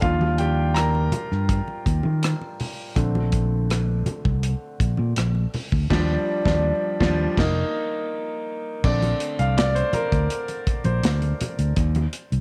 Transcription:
0.01 1.09 D#2 loud
0.01 0.51 F3 soft
0.01 0.51 G3 soft
0.01 0.52 D4 medium
0.01 0.37 F4 medium
0.01 0.40 F5 medium
0.01 kick loud
0.01 closed hi-hat medium
0.01 muted conga soft
0.21 muted conga soft
0.21 high conga medium
0.38 0.74 G4 medium
0.38 0.76 G5 medium
0.38 closed hi-hat medium
0.74 1.46 A#4 medium
0.74 1.45 A#5 medium
0.74 cross-stick loud
0.74 closed hi-hat medium
0.95 muted conga soft
1.12 muted fingered electric bass stroke soft
1.12 closed hi-hat medium
1.12 high conga medium
1.12 low conga medium
1.32 1.60 G2 medium
1.32 cross-stick soft
1.49 kick medium
1.49 closed hi-hat medium
1.49 muted conga soft
1.68 muted conga soft
1.86 2.00 D#2 medium
1.86 kick medium
1.86 closed hi-hat medium
2.03 2.33 D#3 loud
2.03 high conga medium
2.23 cross-stick loud
2.23 closed hi-hat medium
2.23 muted conga soft
2.41 muted conga soft
2.60 open hi-hat medium
2.60 low conga medium
2.95 4.02 A#1 loud
2.95 5.86 D3 medium
2.95 5.86 A3 soft
2.95 5.86 C4 soft
2.95 kick medium
2.95 closed hi-hat medium
2.95 muted conga soft
3.15 muted conga soft
3.15 high conga medium
3.32 kick medium
3.32 closed hi-hat medium
3.70 cross-stick loud
3.70 closed hi-hat medium
4.06 muted fingered electric bass stroke soft
4.06 closed hi-hat medium
4.06 high conga medium
4.06 low conga medium
4.25 4.53 C2 medium
4.25 kick medium
4.43 closed hi-hat medium
4.80 4.94 A#1 medium
4.80 kick medium
4.80 closed hi-hat medium
4.97 5.13 A#2 medium
4.97 high conga medium
5.16 5.45 A#1 medium
5.16 cross-stick loud
5.16 closed hi-hat medium
5.35 muted conga soft
5.54 open hi-hat medium
5.54 low conga medium
5.72 5.86 D2 medium
5.72 kick medium
5.90 6.15 D#2 medium
5.90 6.15 F3 medium
5.90 6.15 G3 medium
5.90 6.16 D4 medium
5.90 kick loud
5.90 snare medium
5.90 crash medium
6.45 6.70 D#2 medium
6.45 6.70 F3 medium
6.45 6.70 G3 medium
6.45 6.71 D4 medium
6.45 kick medium
6.45 snare medium
7.00 7.26 D#2 medium
7.00 7.25 F3 loud
7.00 7.26 G3 medium
7.00 7.26 D4 medium
7.00 kick medium
7.00 snare loud
7.37 7.62 F1 medium
7.37 7.63 A#3 medium
7.37 7.63 D#4 medium
7.37 kick medium
7.37 snare loud
7.37 crash medium
8.84 9.12 A#1 medium
8.84 9.90 D3 soft
8.84 9.90 A3 soft
8.84 9.91 C4 medium
8.84 9.41 D5 medium
8.84 kick loud
8.84 crash medium
8.84 muted conga soft
9.02 closed hi-hat soft
9.02 high conga medium
9.20 closed hi-hat medium
9.39 9.81 C2 medium
9.39 9.58 F5 medium
9.39 closed hi-hat soft
9.58 9.76 D5 medium
9.58 snare loud
9.58 closed hi-hat medium
9.58 muted conga soft
9.75 9.94 C5 medium
9.75 closed hi-hat medium
9.93 10.82 A#4 medium
9.93 muted fingered electric bass stroke soft
9.93 closed hi-hat medium
9.93 high conga medium
9.93 low conga medium
10.12 10.26 D2 medium
10.12 kick medium
10.12 closed hi-hat medium
10.30 closed hi-hat medium
10.48 closed hi-hat soft
10.48 muted conga soft
10.67 muted fingered electric bass stroke soft
10.67 kick medium
10.67 closed hi-hat medium
10.84 10.99 A#1 medium
10.84 12.40 C5 medium
10.84 closed hi-hat soft
10.84 high conga medium
11.03 11.32 D2 medium
11.03 snare loud
11.03 closed hi-hat loud
11.03 muted conga soft
11.22 closed hi-hat soft
11.22 muted conga soft
11.41 closed hi-hat medium
11.41 high conga soft
11.41 low conga medium
11.59 11.73 D2 medium
11.59 closed hi-hat medium
11.76 12.05 D#2 medium
11.76 kick loud
11.76 closed hi-hat medium
11.95 closed hi-hat soft
11.95 muted conga soft
11.95 high conga medium
12.13 closed hi-hat medium
12.32 12.40 C2 medium
12.32 closed hi-hat soft

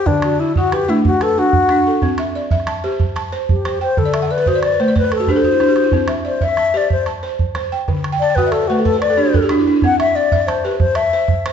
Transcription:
0.00 0.23 G5 medium
0.06 0.40 D3 medium
0.06 0.41 D4 medium
0.06 calabash thump medium
0.06 calabash click soft
0.22 0.56 F#4 medium
0.22 calabash click medium
0.40 0.56 E4 medium
0.40 0.89 E4 medium
0.56 0.75 F#4 medium
0.56 0.89 F#4 medium
0.56 calabash thump medium
0.64 calabash click soft
0.72 0.91 G4 medium
0.72 1.21 B4 medium
0.72 calabash click medium
0.80 calabash click soft
0.88 1.21 A3 medium
0.88 1.36 D4 medium
0.88 1.05 E4 medium
0.88 calabash click soft
0.97 calabash click soft
1.05 1.24 F#4 medium
1.05 calabash thump medium
1.21 1.40 A4 loud
1.21 1.70 B4 medium
1.21 calabash click medium
1.38 1.69 D4 medium
1.38 2.19 F#4 loud
1.53 calabash thump medium
1.69 2.02 D4 medium
1.69 calabash click medium
1.87 2.19 A4 medium
2.02 2.35 C4 medium
2.02 calabash thump medium
2.02 calabash click soft
2.18 2.50 E5 medium
2.18 calabash click medium
2.35 2.84 D5 medium
2.51 2.84 E5 medium
2.51 calabash thump medium
2.60 calabash click soft
2.67 3.15 A5 medium
2.67 calabash click medium
2.76 calabash click soft
2.84 3.16 G4 medium
2.84 3.31 C5 medium
2.84 calabash click soft
2.92 calabash click soft
3.00 calabash thump medium
3.16 3.65 A5 medium
3.16 calabash click medium
3.33 3.64 C5 medium
3.49 3.79 G4 medium
3.49 calabash thump medium
3.65 3.97 C5 medium
3.65 calabash click medium
3.81 4.00 C5 medium
3.81 4.14 G5 medium
3.97 4.30 D3 medium
3.97 4.33 A4 medium
3.97 calabash thump medium
4.05 4.20 D5 medium
4.13 4.28 E5 medium
4.13 calabash click medium
4.22 4.37 F#5 medium
4.31 4.49 B4 medium
4.31 4.45 D5 medium
4.37 4.53 B4 medium
4.37 calabash click soft
4.46 4.79 F#4 medium
4.46 4.62 C5 medium
4.46 4.63 C5 medium
4.46 calabash thump medium
4.55 4.70 D5 medium
4.63 4.78 C5 medium
4.63 4.82 D5 medium
4.63 calabash click medium
4.71 4.86 B4 medium
4.71 calabash click soft
4.80 5.12 A3 medium
4.80 4.94 C5 medium
4.80 4.96 C5 medium
4.80 calabash click soft
4.88 5.03 D5 medium
4.88 calabash click soft
4.96 5.11 B4 medium
4.96 5.10 C5 medium
4.96 calabash thump medium
4.96 calabash click soft
5.04 5.19 B4 medium
5.04 calabash click soft
5.12 5.27 A4 medium
5.12 5.33 A4 medium
5.12 calabash click medium
5.20 5.35 F#4 medium
5.27 5.59 D4 medium
5.27 5.43 G4 medium
5.27 6.10 C5 loud
5.27 calabash thump soft
5.36 5.51 A4 medium
5.43 5.59 F#4 medium
5.43 calabash thump soft
5.52 5.67 E4 medium
5.60 5.93 D4 medium
5.60 5.75 F#4 medium
5.60 calabash click soft
5.68 5.83 G4 medium
5.76 5.91 F#4 medium
5.76 calabash click soft
5.84 5.99 E4 medium
5.92 6.25 C4 medium
5.92 calabash thump medium
5.92 calabash click soft
6.08 6.40 E5 medium
6.08 calabash click medium
6.25 6.46 C5 medium
6.25 6.74 D5 medium
6.41 6.74 E5 medium
6.41 6.79 E5 medium
6.41 calabash thump medium
6.49 calabash click soft
6.57 7.06 A5 medium
6.57 calabash click medium
6.66 calabash click soft
6.74 7.06 G4 medium
6.74 7.22 C5 medium
6.74 6.91 D5 medium
6.74 calabash click soft
6.82 calabash click soft
6.90 7.06 C5 medium
6.90 calabash thump medium
7.06 7.55 A5 medium
7.06 calabash click medium
7.23 7.54 C5 medium
7.39 calabash thump medium
7.55 7.88 C5 medium
7.55 calabash click medium
7.72 8.04 G5 medium
7.88 8.21 D3 medium
7.88 calabash thump medium
7.88 calabash click soft
8.04 calabash click medium
8.12 8.27 G5 medium
8.20 8.37 D5 loud
8.20 8.36 A5 medium
8.30 8.44 G5 medium
8.35 8.70 F#4 medium
8.35 8.53 B4 loud
8.35 8.52 F#5 medium
8.35 calabash thump medium
8.44 8.61 E5 medium
8.44 calabash click soft
8.52 8.69 A4 medium
8.52 8.68 D5 medium
8.52 calabash click medium
8.61 8.77 C5 medium
8.61 calabash click soft
8.68 9.02 A3 medium
8.68 8.83 F#4 medium
8.68 8.84 B4 medium
8.68 calabash click soft
8.78 8.93 A4 medium
8.78 calabash click soft
8.84 9.00 A4 medium
8.84 9.00 B4 medium
8.84 calabash thump medium
8.94 9.09 C5 medium
9.00 9.17 B4 medium
9.00 9.46 D5 loud
9.00 calabash click medium
9.10 9.25 A4 medium
9.17 9.49 D4 medium
9.17 9.33 G4 medium
9.26 9.41 F#4 medium
9.34 9.49 A4 medium
9.34 calabash thump medium
9.42 9.58 G4 medium
9.49 9.66 D4 medium
9.49 9.66 F#4 medium
9.49 calabash click medium
9.59 9.74 E4 medium
9.67 9.82 D4 medium
9.76 9.91 E4 medium
9.82 10.16 C4 medium
9.82 9.99 F#5 medium
9.82 calabash thump medium
9.82 calabash click soft
10.00 10.17 E5 loud
10.00 10.31 E5 medium
10.00 calabash click medium
10.15 10.49 D5 medium
10.15 10.65 D5 medium
10.32 10.65 E5 medium
10.32 calabash thump medium
10.40 calabash click soft
10.47 10.66 C5 medium
10.47 10.96 A5 medium
10.47 calabash click medium
10.56 calabash click soft
10.64 10.97 G4 medium
10.64 10.79 B4 medium
10.64 11.12 C5 medium
10.64 calabash click soft
10.72 calabash click soft
10.79 10.97 C5 medium
10.79 calabash thump medium
10.95 11.45 E5 loud
10.95 11.46 A5 medium
10.95 calabash click medium
11.13 11.45 C5 medium
11.28 calabash thump medium
11.46 11.53 C5 medium
11.46 calabash click medium

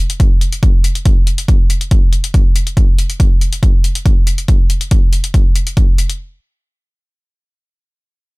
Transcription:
0.10 closed hi-hat medium
0.20 kick loud
0.20 closed hi-hat medium
0.41 closed hi-hat medium
0.53 closed hi-hat medium
0.63 kick loud
0.63 closed hi-hat medium
0.84 closed hi-hat medium
0.95 closed hi-hat medium
1.06 kick loud
1.06 closed hi-hat medium
1.27 closed hi-hat medium
1.38 closed hi-hat medium
1.48 kick loud
1.48 closed hi-hat medium
1.70 closed hi-hat medium
1.81 closed hi-hat medium
1.91 kick loud
1.91 closed hi-hat medium
2.13 closed hi-hat medium
2.24 closed hi-hat medium
2.34 kick loud
2.34 closed hi-hat medium
2.56 closed hi-hat medium
2.67 closed hi-hat medium
2.77 kick loud
2.77 closed hi-hat medium
2.99 closed hi-hat medium
3.10 closed hi-hat medium
3.20 kick loud
3.20 closed hi-hat medium
3.41 closed hi-hat medium
3.53 closed hi-hat medium
3.63 kick loud
3.63 closed hi-hat medium
3.84 closed hi-hat medium
3.95 closed hi-hat medium
4.06 kick loud
4.06 closed hi-hat medium
4.27 closed hi-hat medium
4.38 closed hi-hat medium
4.48 kick loud
4.48 closed hi-hat medium
4.70 closed hi-hat medium
4.81 closed hi-hat medium
4.91 kick loud
4.91 closed hi-hat medium
5.13 closed hi-hat medium
5.24 closed hi-hat medium
5.34 kick loud
5.34 closed hi-hat medium
5.56 closed hi-hat medium
5.67 closed hi-hat medium
5.77 kick loud
5.77 closed hi-hat medium
5.98 closed hi-hat medium
6.10 closed hi-hat medium

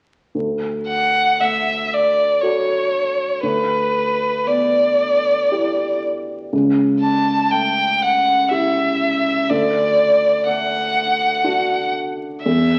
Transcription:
0.35 3.39 D2 soft
0.88 1.42 F#5 soft
1.40 3.02 A3 soft
1.40 1.95 E5 soft
1.93 2.42 D5 soft
2.41 3.39 F#4 soft
2.41 3.39 A4 soft
2.41 3.42 C#5 soft
3.43 6.48 D2 soft
3.43 4.49 B4 soft
4.46 6.12 B3 soft
4.46 6.02 D5 soft
5.52 6.49 E4 soft
5.52 6.50 G4 soft
6.53 9.46 C#2 soft
7.02 7.52 A5 soft
7.51 9.10 A3 soft
7.51 8.04 G5 medium
8.03 8.52 F#5 soft
8.51 9.45 E4 soft
8.51 9.45 G4 soft
8.51 9.51 E5 soft
9.50 12.41 D2 soft
9.50 10.47 D5 medium
10.46 12.04 A3 soft
10.46 11.92 F#5 medium
11.44 12.41 D4 soft
11.44 12.41 F#4 soft
12.43 12.79 E2 soft
12.43 12.79 E5 medium

